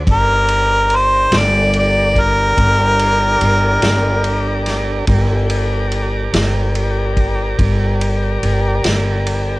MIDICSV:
0, 0, Header, 1, 5, 480
1, 0, Start_track
1, 0, Key_signature, -2, "minor"
1, 0, Tempo, 835655
1, 44, Time_signature, 12, 3, 24, 8
1, 5511, End_track
2, 0, Start_track
2, 0, Title_t, "Harmonica"
2, 0, Program_c, 0, 22
2, 72, Note_on_c, 0, 70, 89
2, 550, Note_on_c, 0, 72, 88
2, 558, Note_off_c, 0, 70, 0
2, 788, Note_on_c, 0, 74, 88
2, 797, Note_off_c, 0, 72, 0
2, 1009, Note_off_c, 0, 74, 0
2, 1028, Note_on_c, 0, 74, 78
2, 1268, Note_on_c, 0, 70, 99
2, 1277, Note_off_c, 0, 74, 0
2, 2673, Note_off_c, 0, 70, 0
2, 5511, End_track
3, 0, Start_track
3, 0, Title_t, "Tonewheel organ"
3, 0, Program_c, 1, 16
3, 44, Note_on_c, 1, 62, 65
3, 48, Note_on_c, 1, 67, 70
3, 49, Note_on_c, 1, 74, 66
3, 51, Note_on_c, 1, 70, 66
3, 2901, Note_off_c, 1, 62, 0
3, 2903, Note_off_c, 1, 67, 0
3, 2904, Note_off_c, 1, 74, 0
3, 2905, Note_off_c, 1, 70, 0
3, 2922, Note_on_c, 1, 67, 63
3, 2923, Note_on_c, 1, 70, 70
3, 2923, Note_on_c, 1, 74, 68
3, 5511, Note_off_c, 1, 67, 0
3, 5511, Note_off_c, 1, 70, 0
3, 5511, Note_off_c, 1, 74, 0
3, 5511, End_track
4, 0, Start_track
4, 0, Title_t, "Upright bass"
4, 0, Program_c, 2, 32
4, 40, Note_on_c, 2, 31, 87
4, 739, Note_off_c, 2, 31, 0
4, 758, Note_on_c, 2, 31, 93
4, 1458, Note_off_c, 2, 31, 0
4, 1480, Note_on_c, 2, 31, 100
4, 1939, Note_off_c, 2, 31, 0
4, 1962, Note_on_c, 2, 31, 90
4, 2184, Note_off_c, 2, 31, 0
4, 2198, Note_on_c, 2, 31, 89
4, 2898, Note_off_c, 2, 31, 0
4, 2915, Note_on_c, 2, 31, 94
4, 3616, Note_off_c, 2, 31, 0
4, 3638, Note_on_c, 2, 31, 92
4, 4338, Note_off_c, 2, 31, 0
4, 4359, Note_on_c, 2, 31, 100
4, 4818, Note_off_c, 2, 31, 0
4, 4842, Note_on_c, 2, 31, 86
4, 5063, Note_off_c, 2, 31, 0
4, 5082, Note_on_c, 2, 31, 93
4, 5511, Note_off_c, 2, 31, 0
4, 5511, End_track
5, 0, Start_track
5, 0, Title_t, "Drums"
5, 40, Note_on_c, 9, 36, 104
5, 41, Note_on_c, 9, 51, 86
5, 97, Note_off_c, 9, 36, 0
5, 98, Note_off_c, 9, 51, 0
5, 278, Note_on_c, 9, 51, 67
5, 336, Note_off_c, 9, 51, 0
5, 516, Note_on_c, 9, 51, 46
5, 574, Note_off_c, 9, 51, 0
5, 758, Note_on_c, 9, 51, 83
5, 763, Note_on_c, 9, 38, 118
5, 815, Note_off_c, 9, 51, 0
5, 821, Note_off_c, 9, 38, 0
5, 997, Note_on_c, 9, 51, 59
5, 1055, Note_off_c, 9, 51, 0
5, 1239, Note_on_c, 9, 36, 74
5, 1241, Note_on_c, 9, 51, 58
5, 1296, Note_off_c, 9, 36, 0
5, 1298, Note_off_c, 9, 51, 0
5, 1479, Note_on_c, 9, 36, 79
5, 1480, Note_on_c, 9, 51, 83
5, 1536, Note_off_c, 9, 36, 0
5, 1537, Note_off_c, 9, 51, 0
5, 1720, Note_on_c, 9, 51, 68
5, 1777, Note_off_c, 9, 51, 0
5, 1958, Note_on_c, 9, 51, 69
5, 2016, Note_off_c, 9, 51, 0
5, 2194, Note_on_c, 9, 51, 88
5, 2200, Note_on_c, 9, 38, 109
5, 2252, Note_off_c, 9, 51, 0
5, 2257, Note_off_c, 9, 38, 0
5, 2435, Note_on_c, 9, 51, 59
5, 2492, Note_off_c, 9, 51, 0
5, 2676, Note_on_c, 9, 51, 62
5, 2682, Note_on_c, 9, 38, 33
5, 2734, Note_off_c, 9, 51, 0
5, 2740, Note_off_c, 9, 38, 0
5, 2913, Note_on_c, 9, 51, 80
5, 2915, Note_on_c, 9, 36, 108
5, 2970, Note_off_c, 9, 51, 0
5, 2973, Note_off_c, 9, 36, 0
5, 3157, Note_on_c, 9, 51, 66
5, 3214, Note_off_c, 9, 51, 0
5, 3398, Note_on_c, 9, 51, 52
5, 3456, Note_off_c, 9, 51, 0
5, 3639, Note_on_c, 9, 51, 99
5, 3645, Note_on_c, 9, 38, 112
5, 3697, Note_off_c, 9, 51, 0
5, 3703, Note_off_c, 9, 38, 0
5, 3877, Note_on_c, 9, 51, 59
5, 3935, Note_off_c, 9, 51, 0
5, 4117, Note_on_c, 9, 36, 75
5, 4117, Note_on_c, 9, 51, 55
5, 4175, Note_off_c, 9, 36, 0
5, 4175, Note_off_c, 9, 51, 0
5, 4358, Note_on_c, 9, 36, 86
5, 4359, Note_on_c, 9, 51, 78
5, 4416, Note_off_c, 9, 36, 0
5, 4417, Note_off_c, 9, 51, 0
5, 4601, Note_on_c, 9, 51, 60
5, 4659, Note_off_c, 9, 51, 0
5, 4841, Note_on_c, 9, 51, 60
5, 4899, Note_off_c, 9, 51, 0
5, 5078, Note_on_c, 9, 51, 80
5, 5084, Note_on_c, 9, 38, 95
5, 5136, Note_off_c, 9, 51, 0
5, 5141, Note_off_c, 9, 38, 0
5, 5322, Note_on_c, 9, 51, 63
5, 5379, Note_off_c, 9, 51, 0
5, 5511, End_track
0, 0, End_of_file